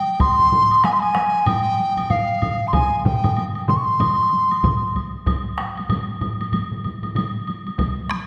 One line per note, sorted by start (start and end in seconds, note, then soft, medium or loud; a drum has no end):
0.00 0.22 G5 medium
0.08 taiko high soft
0.20 0.86 C6 loud
0.20 taiko loud
0.20 taiko low-mid medium
0.20 taiko high medium
0.20 high woodblock medium
0.39 taiko low-mid medium
0.39 taiko high soft
0.52 taiko low-mid loud
0.52 taiko high medium
0.71 taiko high soft
0.71 high woodblock soft
0.84 0.93 G#5 medium
0.84 taiko rim medium
0.84 taiko high medium
0.84 high woodblock soft
0.92 1.01 C6 medium
1.00 1.47 G#5 medium
1.00 taiko high soft
1.00 high woodblock soft
1.15 taiko rim medium
1.15 taiko high medium
1.35 taiko high soft
1.46 2.12 G5 medium
1.46 taiko low-mid loud
1.46 taiko high medium
1.46 high woodblock medium
1.67 taiko high soft
1.79 taiko high medium
1.97 taiko low-mid medium
1.97 taiko high medium
1.97 high woodblock soft
2.10 2.69 F5 medium
2.10 taiko low-mid medium
2.10 taiko high medium
2.10 high woodblock soft
2.30 taiko high soft
2.42 taiko low-mid medium
2.42 taiko high medium
2.42 high woodblock soft
2.61 taiko high soft
2.67 2.75 C6 medium
2.73 2.99 G#5 medium
2.73 taiko loud
2.73 taiko low-mid loud
2.73 taiko mid loud
2.73 taiko high medium
2.73 high woodblock medium
2.93 taiko high soft
2.99 3.05 G#5 medium
3.04 3.44 G5 medium
3.04 taiko low-mid loud
3.04 taiko mid loud
3.04 taiko high medium
3.24 taiko low-mid medium
3.24 taiko mid medium
3.24 high woodblock soft
3.37 taiko high medium
3.37 high woodblock soft
3.55 taiko high soft
3.55 high woodblock soft
3.68 3.77 C6 medium
3.68 taiko low-mid medium
3.68 taiko mid loud
3.68 taiko high medium
3.76 3.86 C#6 medium
3.84 4.95 C6 medium
3.84 taiko high soft
4.00 taiko low-mid loud
4.00 taiko mid loud
4.00 taiko high medium
4.00 high woodblock medium
4.19 taiko high soft
4.33 taiko high medium
4.51 taiko high soft
4.51 high woodblock soft
4.63 taiko medium
4.63 taiko low-mid medium
4.63 taiko mid loud
4.63 taiko high medium
4.63 high woodblock soft
4.83 taiko high soft
4.95 taiko medium
4.95 taiko high medium
4.95 high woodblock soft
5.15 taiko high soft
5.26 taiko loud
5.26 taiko low-mid loud
5.26 taiko high medium
5.26 high woodblock soft
5.58 taiko rim medium
5.58 taiko high soft
5.58 high woodblock soft
5.77 taiko high soft
5.77 high woodblock soft
5.89 taiko low-mid medium
5.89 taiko high medium
5.89 high woodblock medium
6.21 taiko low-mid medium
6.21 taiko high medium
6.21 high woodblock soft
6.41 taiko high medium
6.41 high woodblock soft
6.52 taiko low-mid medium
6.52 taiko high medium
6.52 high woodblock soft
6.72 taiko low-mid medium
6.84 taiko low-mid medium
6.84 taiko high medium
6.84 high woodblock soft
7.03 taiko low-mid medium
7.03 taiko high soft
7.03 high woodblock soft
7.16 taiko low-mid medium
7.16 taiko high medium
7.16 high woodblock medium
7.47 taiko high medium
7.47 high woodblock soft
7.67 taiko high medium
7.67 high woodblock soft
7.78 taiko medium
7.78 taiko mid medium
7.78 taiko high medium
7.78 high woodblock soft
8.10 taiko rim medium
8.10 taiko high medium
8.10 high woodblock soft